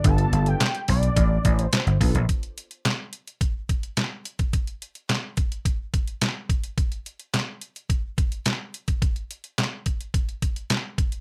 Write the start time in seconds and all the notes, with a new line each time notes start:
0.04 G1 B3 D4 F4 A4 A5, kick, closed hi-hat
0.18 closed hi-hat
0.32 G1, closed hi-hat
0.46 G5, closed hi-hat
0.61 snare, clap, closed hi-hat
0.75 closed hi-hat
0.88 B1 D5, kick, open hi-hat
1.03 closed hi-hat
1.16 A1, kick, closed hi-hat
1.45 A1, kick, closed hi-hat
1.59 closed hi-hat
1.64 C5
1.73 snare, clap, closed hi-hat
1.87 G1, closed hi-hat
2.00 B1 B3 D4 F4 A4, kick, open hi-hat
2.15 A#1, closed hi-hat
2.29 kick, closed hi-hat
2.43 closed hi-hat
2.58 closed hi-hat
2.71 closed hi-hat
2.85 snare, clap, closed hi-hat
3.13 closed hi-hat
3.27 closed hi-hat
3.41 kick, closed hi-hat
3.69 kick, closed hi-hat
3.83 closed hi-hat
3.97 snare, clap, closed hi-hat
4.25 closed hi-hat
4.39 kick, closed hi-hat
4.53 kick, closed hi-hat
4.67 closed hi-hat
4.82 closed hi-hat
4.95 closed hi-hat
5.10 snare, clap, closed hi-hat
5.37 kick, closed hi-hat
5.52 closed hi-hat
5.65 kick, closed hi-hat
5.94 kick, closed hi-hat
6.08 closed hi-hat
6.21 snare, clap, closed hi-hat
6.49 kick, closed hi-hat
6.64 closed hi-hat
6.78 kick, closed hi-hat
6.92 closed hi-hat
7.06 closed hi-hat
7.20 closed hi-hat
7.34 snare, clap, closed hi-hat
7.61 closed hi-hat
7.76 closed hi-hat
7.90 kick, closed hi-hat
8.18 kick, closed hi-hat
8.32 closed hi-hat
8.46 snare, clap, closed hi-hat
8.74 closed hi-hat
8.88 kick, closed hi-hat
9.02 kick, closed hi-hat
9.16 closed hi-hat
9.31 closed hi-hat
9.44 closed hi-hat
9.58 snare, clap, closed hi-hat
9.86 kick, closed hi-hat
10.01 closed hi-hat
10.14 kick, closed hi-hat
10.29 closed hi-hat
10.42 kick, closed hi-hat
10.56 closed hi-hat
10.70 snare, clap, closed hi-hat
10.98 kick, closed hi-hat
11.12 closed hi-hat